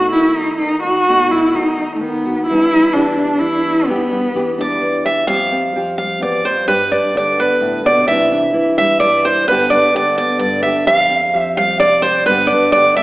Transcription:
0.00 0.13 B2 medium
0.00 1.05 A3 medium
0.00 0.12 D#4 medium
0.00 0.11 F#4 medium
0.00 1.55 F#4 medium
0.12 0.59 D#3 medium
0.12 0.38 D#4 soft
0.12 0.38 E4 medium
0.36 0.58 D#4 medium
0.36 0.83 D#4 soft
0.59 1.05 D#3 medium
0.59 0.81 D#4 medium
0.83 1.04 D#4 medium
0.83 1.33 F#4 medium
1.08 1.54 B2 medium
1.08 1.30 A3 soft
1.08 1.77 D#4 medium
1.31 2.45 A3 medium
1.31 1.57 E4 medium
1.54 2.00 D#3 medium
1.54 1.94 D#4 medium
1.54 2.25 F#4 medium
1.78 2.45 D#4 medium
1.94 2.02 A3 medium
2.01 2.45 D#3 medium
2.01 2.46 B3 medium
2.26 2.45 F#4 medium
2.46 3.86 E2 medium
2.46 2.95 E4 loud
2.50 2.72 G3 medium
2.50 3.17 D4 medium
2.72 3.88 G3 medium
2.93 3.40 E3 medium
2.93 3.41 D4 medium
2.93 3.90 G4 medium
3.17 3.63 D4 medium
3.39 3.85 E3 medium
3.39 3.86 E4 medium
3.64 3.85 D4 medium
3.85 5.27 E2 medium
3.85 4.10 G3 medium
3.85 4.80 B3 medium
3.90 4.57 D4 medium
3.90 4.35 G4 medium
4.12 5.27 G3 medium
4.35 4.80 E3 medium
4.35 5.04 G4 medium
4.58 5.25 D4 medium
4.58 5.05 D5 medium
4.81 5.25 E3 medium
5.05 5.25 G4 medium
5.05 5.27 E5 medium
5.27 6.21 F2 medium
5.27 5.74 F3 medium
5.27 5.98 G3 medium
5.27 5.51 C4 medium
5.27 5.76 G4 medium
5.27 5.94 F5 loud
5.52 6.66 C4 medium
5.76 6.66 F3 medium
5.76 6.68 G4 medium
5.98 7.37 G3 medium
5.98 6.20 F5 medium
6.21 6.44 E2 medium
6.21 6.46 D5 medium
6.45 6.67 F2 medium
6.45 6.67 C5 medium
6.68 8.05 G2 medium
6.68 7.15 G4 medium
6.68 6.90 B4 medium
6.92 8.10 D4 medium
6.92 7.15 D5 medium
7.15 8.08 D3 medium
7.15 8.11 G4 medium
7.15 7.40 D5 medium
7.37 8.05 B3 medium
7.37 7.87 B4 medium
7.60 7.84 A2 medium
7.85 8.07 B2 medium
7.85 8.07 D5 medium
8.08 8.54 C3 medium
8.08 8.52 E3 medium
8.08 8.78 G3 medium
8.08 8.31 D4 medium
8.08 8.53 E4 medium
8.08 8.77 E5 loud
8.32 9.45 D4 medium
8.53 9.44 E3 medium
8.53 9.24 E4 medium
8.78 9.50 G3 medium
8.78 8.99 E5 medium
9.00 9.45 G2 medium
9.00 9.24 D5 medium
9.25 9.48 E4 medium
9.25 9.47 C5 medium
9.48 10.38 G2 medium
9.48 9.93 D3 medium
9.48 10.18 B3 medium
9.48 9.70 D4 medium
9.48 9.94 G4 medium
9.48 9.72 B4 loud
9.70 10.85 D4 medium
9.70 9.95 D5 medium
9.94 10.87 D3 medium
9.94 10.65 G4 medium
9.94 10.16 D5 medium
10.18 10.85 B3 medium
10.18 10.38 D5 medium
10.39 10.84 G2 medium
10.39 10.62 D5 medium
10.63 10.88 G4 medium
10.63 10.87 E5 medium
10.87 12.24 F2 medium
10.87 11.33 G4 medium
10.87 11.37 F5 loud
11.09 12.24 C4 medium
11.33 12.24 F3 medium
11.33 12.04 G4 medium
11.33 11.56 E5 loud
11.57 12.28 G3 medium
11.57 11.79 F5 loud
11.80 12.24 C3 medium
11.80 12.02 D5 medium
12.02 12.30 G4 medium
12.02 12.26 C5 medium
12.26 13.03 G2 medium
12.26 12.74 D3 medium
12.26 12.97 B3 medium
12.26 12.52 D4 medium
12.26 12.50 B4 loud
12.30 12.76 G4 medium
12.47 12.70 D5 medium
12.52 13.03 D4 medium
12.72 13.03 D3 medium
12.72 13.03 G4 medium
12.72 12.96 D5 loud
12.96 13.03 B3 medium
12.96 13.03 E5 loud

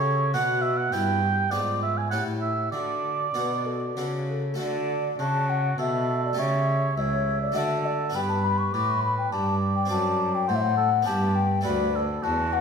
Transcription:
0.00 0.30 C#3 medium
0.00 0.36 C#3 medium
0.00 0.17 C#4 medium
0.00 0.17 E4 medium
0.00 0.18 G4 medium
0.00 0.33 A4 medium
0.00 0.33 C#5 loud
0.34 0.88 B2 medium
0.34 0.93 B2 medium
0.34 0.88 B3 medium
0.34 0.89 D4 medium
0.34 0.91 F#4 medium
0.34 0.89 F#4 medium
0.34 0.64 F#5 loud
0.62 0.79 E5 loud
0.77 0.94 F#5 loud
0.92 1.48 G2 medium
0.92 1.51 G2 medium
0.92 1.48 B3 medium
0.92 1.21 E4 medium
0.92 1.48 E4 medium
0.92 1.48 B4 medium
0.92 1.53 G5 loud
1.22 1.29 G4 medium
1.51 2.14 G#2 medium
1.51 2.07 G#2 medium
1.51 2.07 B3 medium
1.51 2.07 F4 medium
1.51 2.13 F4 medium
1.51 2.08 B4 soft
1.51 1.81 D5 loud
1.83 1.99 E5 loud
1.98 2.10 G#5 medium
2.10 2.69 A2 medium
2.10 2.73 A2 medium
2.10 2.69 C#4 soft
2.10 2.72 E4 medium
2.10 2.69 G4 soft
2.10 2.69 A4 soft
2.10 2.24 F#5 medium
2.41 2.71 E5 medium
2.72 3.31 D3 medium
2.72 3.34 D3 medium
2.72 3.27 F#4 medium
2.72 4.24 D5 loud
3.34 3.93 B2 medium
3.34 3.96 B2 medium
3.34 3.79 D4 soft
3.34 3.79 F#4 soft
3.34 3.80 A4 medium
3.34 3.67 B4 medium
3.65 3.96 A4 medium
3.97 4.55 C#3 medium
3.97 4.58 C#3 medium
3.97 4.41 D4 soft
3.97 4.41 F#4 soft
3.97 4.42 A4 medium
3.97 4.05 B4 medium
4.28 4.58 A4 medium
4.54 5.15 A3 medium
4.54 6.33 F#4 medium
4.54 6.34 A4 medium
4.59 5.15 D3 medium
4.59 5.15 D5 loud
5.19 5.77 C#3 medium
5.19 5.75 C#3 medium
5.19 5.75 F#4 medium
5.19 5.50 A5 loud
5.49 5.79 F#5 loud
5.78 6.37 B2 medium
5.78 6.34 B2 medium
5.78 6.37 A4 medium
5.78 6.23 E5 loud
6.24 6.40 D5 medium
6.33 6.93 C#3 medium
6.33 6.96 C#3 medium
6.33 7.50 A3 medium
6.33 7.51 G4 medium
6.33 7.51 A4 medium
6.39 6.96 C#5 medium
6.39 7.00 E5 loud
6.96 7.54 C#2 medium
6.96 7.52 C#2 medium
6.96 7.40 C#5 loud
6.96 7.55 E5 medium
7.41 7.57 D5 loud
7.52 8.13 D3 medium
7.52 8.11 A3 medium
7.52 8.12 F#4 medium
7.52 8.12 D5 medium
7.52 7.87 E5 loud
7.57 8.11 D3 medium
7.57 8.17 A4 medium
7.85 8.13 D5 medium
8.10 8.69 B3 medium
8.10 8.70 D4 medium
8.10 9.85 D5 medium
8.14 8.70 G2 medium
8.14 8.73 G2 medium
8.14 8.73 B4 loud
8.14 8.20 G5 loud
8.28 8.45 A5 loud
8.44 8.59 B5 loud
8.58 8.74 C#6 loud
8.72 9.28 A2 medium
8.72 9.31 A2 medium
8.72 9.31 B4 medium
8.72 8.90 D6 loud
8.88 9.02 C#6 loud
9.01 9.16 B5 loud
9.17 9.30 G5 loud
9.31 9.89 G2 medium
9.31 9.86 G2 medium
9.31 10.46 D5 loud
9.31 9.55 A5 loud
9.74 9.89 G5 loud
9.85 11.01 C4 medium
9.85 11.01 D4 medium
9.85 11.02 D5 medium
9.90 10.44 F#2 medium
9.90 10.51 F#2 loud
9.90 10.36 A5 loud
10.34 10.49 G5 loud
10.48 11.03 A2 medium
10.48 11.07 A2 medium
10.48 10.77 C5 medium
10.48 10.56 F#5 loud
10.55 10.62 E5 loud
10.60 11.07 F#5 loud
10.77 10.90 A4 medium
11.02 11.61 B3 medium
11.02 11.61 D4 medium
11.02 11.43 G4 loud
11.02 11.63 B4 medium
11.02 11.36 A5 loud
11.07 11.61 G2 medium
11.07 11.65 G2 loud
11.35 11.63 G5 loud
11.61 12.20 A3 medium
11.61 12.61 D4 medium
11.61 12.61 F#4 medium
11.61 11.97 B4 loud
11.61 12.02 D5 loud
11.65 12.20 D2 medium
11.65 12.23 D2 loud
11.96 12.24 A4 medium
12.22 12.61 E2 medium
12.22 12.61 E2 loud
12.22 12.61 F#4 loud
12.22 12.54 A5 loud
12.52 12.61 F#5 loud

